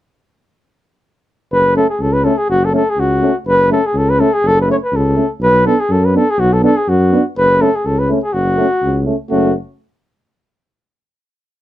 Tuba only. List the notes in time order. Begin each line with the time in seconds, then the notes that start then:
1.51 F#1
2.00 C#2
2.48 F#1
2.97 C#2
3.45 F#1
3.94 C#2
4.43 F#1
4.92 C#2
5.40 B1
5.89 F#2
6.38 B1
6.88 F#2
7.37 F#1
7.85 C#2
8.33 F#1
8.82 C#2
9.31 F#1